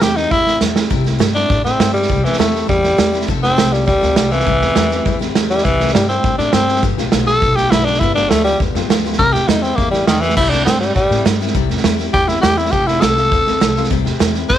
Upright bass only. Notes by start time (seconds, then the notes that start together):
0.01 E2
0.31 E2
0.61 E2
0.91 C2
1.20 G2
1.50 A2
1.65 A2
1.80 G2
2.09 C2
2.24 E2
2.39 E2
2.69 E2
2.98 E2
3.28 F1
3.59 C2
3.88 D2
4.03 D2
4.17 C2
4.47 C2
4.62 E2
4.76 E2
5.06 E2
5.35 E2
5.65 C2
5.95 G2
6.24 A2
6.39 A2
6.53 G2
6.83 G1
6.98 B1
7.13 B1
7.42 B1
7.72 B1
8.01 G1
8.31 D2
8.60 E2
8.75 F2
8.89 D2
9.19 C2
9.33 E2
9.48 E2
9.78 E2
10.07 E2
10.37 C2
10.66 G2
10.96 A2
11.10 A2
11.25 G2
11.55 C2
11.69 E2
11.84 E2
12.14 E2
12.43 E2
12.73 F1
13.02 C2
13.32 D2
13.46 D2
13.62 C2
13.91 C2
14.06 E2
14.20 E2
14.50 E2